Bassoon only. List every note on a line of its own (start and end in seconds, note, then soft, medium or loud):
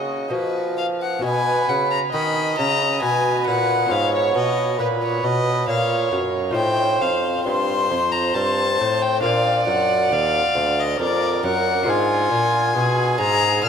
0.00 0.32 C#3 medium
0.31 1.24 F3 medium
1.24 1.66 B2 medium
1.70 2.00 C#3 medium
2.13 2.57 D#3 medium
2.58 3.01 C#3 medium
3.02 3.46 B2 medium
3.48 3.91 A#2 medium
3.91 4.35 G#2 medium
4.35 4.81 B2 medium
4.79 5.23 A#2 medium
5.24 5.67 B2 medium
5.67 6.10 A#2 medium
6.11 6.57 F#2 medium
6.55 7.00 A2 medium
7.00 7.45 F2 medium
7.45 7.89 G2 medium
7.90 8.34 F2 medium
8.35 8.81 G2 medium
8.79 9.22 A2 medium
9.23 9.66 A#2 medium
9.67 10.13 F#2 medium
10.12 10.42 D#2 medium
10.55 10.98 D2 medium
10.99 11.42 F2 medium
11.43 11.86 F#2 medium
11.87 12.30 G#2 medium
12.31 12.74 A#2 medium
12.76 13.20 B2 medium
13.19 13.66 G#2 medium
13.64 13.69 A#2 medium